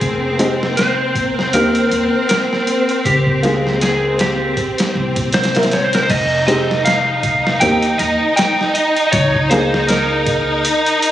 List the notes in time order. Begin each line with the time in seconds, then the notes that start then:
Already playing: A#3 C4 G#4 A#4
0.01 F1, kick, closed hi-hat
0.39 G#3 C4 D#4 G4, closed hi-hat
0.63 snare
0.77 C5, snare, closed hi-hat
1.15 kick, closed hi-hat
1.39 snare
1.53 D#2 A#3 C4 D#4 G4 A#4, closed hi-hat
1.75 closed hi-hat
1.91 D#2, closed hi-hat
2.29 A#4, snare, closed hi-hat
2.53 snare
2.67 closed hi-hat
2.89 closed hi-hat
3.05 C#2 G4, kick, closed hi-hat
3.27 kick
3.43 G#3 A#3 D#4 F4, snare, closed hi-hat
3.67 snare
3.81 G#4, snare, closed hi-hat
4.19 G4, snare, closed hi-hat
4.57 kick, closed hi-hat
4.78 snare, closed hi-hat
4.95 C2
5.16 kick, closed hi-hat
5.33 C5, snare, closed hi-hat
5.43 snare, closed hi-hat
5.55 A#3 C4 E4 A#4, snare, closed hi-hat
5.63 snare, closed hi-hat
5.71 C#5, snare, closed hi-hat
5.84 C5
5.93 A#4, snare, closed hi-hat
6.03 C5
6.09 F1 D#4 D#5, kick, closed hi-hat, crash
6.47 G#3 C4 D#4 G4 D#5, closed hi-hat
6.71 snare
6.85 F5, snare, closed hi-hat
7.23 kick, closed hi-hat
7.47 snare
7.60 D#2 A#3 C4 D#4 G4 G5, closed hi-hat
7.82 closed hi-hat
7.98 D#2 D#5, closed hi-hat
8.36 G5, snare, closed hi-hat
8.61 snare
8.74 D#5, closed hi-hat
8.96 closed hi-hat
9.07 D#5
9.12 C#2 C#5, kick, closed hi-hat
9.34 kick
9.50 A#3 D#4 F4 G#4 C5, snare, closed hi-hat
9.74 snare
9.88 A#4, snare, closed hi-hat
10.26 kick, closed hi-hat
10.65 closed hi-hat
10.86 closed hi-hat
11.02 closed hi-hat